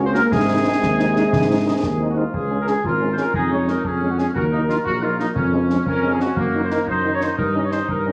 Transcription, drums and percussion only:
0.15 snare
0.32 concert bass drum, snare
0.83 concert bass drum, snare
1.00 snare
1.16 snare
1.33 concert bass drum, snare
1.83 concert bass drum, snare
2.34 concert bass drum
2.67 snare
2.84 concert bass drum
3.17 snare
3.34 concert bass drum
3.68 snare
3.84 concert bass drum
4.19 snare
4.36 concert bass drum
4.70 snare
4.86 concert bass drum
5.20 snare
5.36 concert bass drum
5.70 snare
5.86 concert bass drum
6.20 snare
6.37 concert bass drum
6.71 snare
6.87 concert bass drum
7.21 snare
7.38 concert bass drum
7.72 snare
7.88 concert bass drum

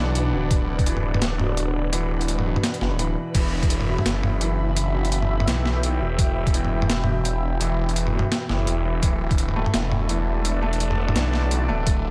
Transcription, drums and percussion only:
0.15 closed hi-hat
0.51 kick, closed hi-hat
0.79 kick, closed hi-hat
0.86 closed hi-hat
0.97 mid tom
1.14 mid tom
1.22 snare, closed hi-hat
1.39 mid tom
1.57 closed hi-hat
1.93 closed hi-hat
2.21 closed hi-hat
2.28 closed hi-hat
2.39 mid tom
2.56 mid tom
2.64 snare, closed hi-hat
2.74 closed hi-hat
2.81 snare
2.99 closed hi-hat
3.35 kick, closed hi-hat, crash
3.63 kick, closed hi-hat
3.70 closed hi-hat
3.81 mid tom
3.98 mid tom
4.06 snare, closed hi-hat
4.23 mid tom
4.41 closed hi-hat
4.76 closed hi-hat
5.05 closed hi-hat
5.12 closed hi-hat
5.22 mid tom
5.40 mid tom
5.48 snare, closed hi-hat
5.66 snare
5.83 closed hi-hat
6.19 kick, closed hi-hat
6.47 kick, closed hi-hat
6.54 closed hi-hat
6.65 mid tom
6.82 mid tom
6.90 snare, closed hi-hat
7.04 mid tom
7.25 closed hi-hat
7.61 closed hi-hat
7.89 closed hi-hat
7.96 closed hi-hat
8.07 mid tom
8.19 mid tom
8.32 snare, closed hi-hat
8.49 snare
8.67 closed hi-hat
9.03 kick, closed hi-hat
9.31 kick, closed hi-hat
9.38 closed hi-hat
9.49 mid tom
9.66 mid tom
9.74 snare, closed hi-hat
9.92 mid tom
10.09 closed hi-hat
10.45 closed hi-hat
10.73 closed hi-hat
10.80 closed hi-hat
10.91 mid tom
10.95 mid tom
10.98 mid tom
11.02 mid tom
11.04 mid tom
11.08 mid tom
11.16 snare, closed hi-hat
11.33 snare
11.51 closed hi-hat
11.87 kick, closed hi-hat

